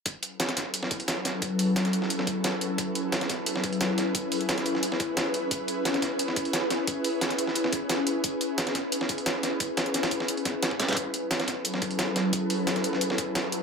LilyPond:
<<
  \new Staff \with { instrumentName = "Ambient pad" } { \time 4/4 \key fis \minor \tempo 4 = 176 << { <cis' e' gis' b'>1~ | <cis' e' gis' b'>1~ | <cis' e' gis' b'>1~ | <cis' e' gis' b'>1~ |
<cis' e' gis' b'>1~ | <cis' e' gis' b'>1~ | <cis' e' gis' b'>1~ | <cis' e' gis' b'>1 |
<cis' e' gis' b'>1~ | <cis' e' gis' b'>1 | } \\ { <fis a'>1~ | <fis a'>1~ | <fis a'>1~ | <fis a'>1 |
r1 | r1 | r1 | r1 |
<fis a'>1~ | <fis a'>1 | } >> }
  \new DrumStaff \with { instrumentName = "Drums" } \drummode { \time 4/4 <hh bd>8 hh8 <hh sn>16 <hh sn>16 <hh bd sn>8 hh16 sn16 <hh bd>16 hh16 <hh sn>8 <hh sn>8 | <hh bd>8 <hh hho>8 <hh sn>16 <hh sn>16 hh16 sn16 hh16 sn16 <hh bd>8 <hh sn>8 hh8 | <hh bd>8 hh8 <hh sn>16 <hh sn>16 <hh bd sn>8 hh16 sn16 <hh bd>16 hh16 <hh sn>8 <hh sn>8 | <hh bd>8 <hh hho>16 hh16 <hh sn>16 <hh sn>16 hh16 sn16 hh16 sn16 <hh bd>8 <hh sn>8 hh8 |
<hh bd>8 hh8 <hh sn>16 <hh sn>16 <hh bd sn>8 hh16 sn16 <hh bd>16 hh16 <hh sn>8 <hh sn>8 | <hh bd>8 <hh hho>8 <hh sn>16 <hh sn>16 hh16 sn16 hh16 sn16 <hh bd>8 <hh sn>8 hh8 | <hh bd>8 hh8 <hh sn>16 <hh sn>16 <hh bd sn>8 hh16 sn16 <hh bd>16 hh16 <hh sn>8 <hh sn>8 | <hh bd>8 <hh sn>16 hh16 <hh sn>16 <hh sn>16 <hh bd>16 sn16 hh16 hh16 <hh bd sn>8 <hh sn>16 bd16 <hh sn>16 <hh sn>32 <hh sn>32 |
<hh bd>8 hh8 <hh sn>16 <hh sn>16 <hh bd sn>8 hh16 sn16 <hh bd>16 hh16 <hh sn>8 <hh sn>8 | <hh bd>8 <hh hho>8 <hh sn>16 <hh sn>16 hh16 sn16 hh16 sn16 <hh bd>8 <hh sn>8 hh8 | }
>>